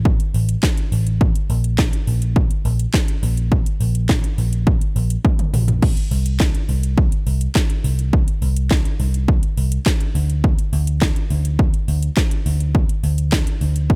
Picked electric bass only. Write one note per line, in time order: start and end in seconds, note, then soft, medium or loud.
0.00 0.16 A1 medium
0.34 0.54 A1 medium
0.92 1.32 A1 medium
1.50 1.89 A#1 loud
2.07 2.47 A#1 medium
2.65 2.85 A#1 loud
3.23 3.62 A#1 loud
3.80 4.20 A#1 loud
4.38 4.78 A#1 medium
4.96 5.16 A#1 medium
5.54 5.93 A#1 medium
6.11 6.51 C2 loud
6.69 7.09 C2 medium
7.27 7.46 C2 medium
7.84 8.24 C2 medium
8.42 8.82 C2 loud
9.00 9.39 C2 medium
9.57 9.77 C2 medium
10.15 10.55 D2 medium
10.73 11.12 D2 loud
11.30 11.70 D2 medium
11.88 12.08 D2 medium
12.46 12.86 D2 medium
13.04 13.43 D2 loud
13.61 13.96 D2 loud